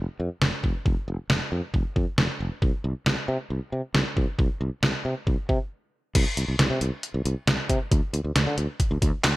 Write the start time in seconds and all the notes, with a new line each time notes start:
0.20 F2
0.42 F1, snare
0.64 F1, kick
0.86 F1, kick
1.08 F1
1.30 F1, snare
1.52 F2
1.74 F1, kick
1.96 F2, kick
2.18 F1, snare
2.40 F1
2.62 C2, kick
2.84 C2
3.06 C2, snare
3.28 C3
3.50 C2
3.72 C3
3.94 C2, snare
4.17 C2, kick
4.39 C2, kick
4.61 C2
4.83 C2, snare
5.05 C3
5.27 C2, kick
5.49 C3, kick
6.15 C2, kick, closed hi-hat, crash
6.37 C2, closed hi-hat
6.48 C2
6.59 C2, snare, closed hi-hat
6.70 C3
6.81 C2, closed hi-hat
7.03 closed hi-hat
7.14 C2
7.25 C2, closed hi-hat
7.47 C2, snare, closed hi-hat
7.69 C3, kick, closed hi-hat
7.91 D2, kick, closed hi-hat
8.13 D2, closed hi-hat
8.24 D2
8.35 D2, snare, closed hi-hat
8.47 D3
8.58 D2, closed hi-hat
8.80 kick, closed hi-hat
8.91 D2
9.02 D2, kick, closed hi-hat
9.24 D2, snare, clap, closed hi-hat